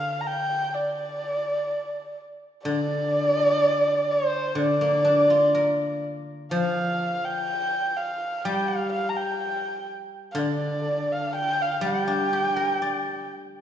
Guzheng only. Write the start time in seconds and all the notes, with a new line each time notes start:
Already playing: D3
2.65 D3
4.55 D3
4.81 A#3
5.05 D4
5.30 F4
5.55 A#4
6.51 F3
8.45 G3
10.35 D3
11.81 G3
12.08 D4
12.33 G4
12.56 A#4
12.82 D5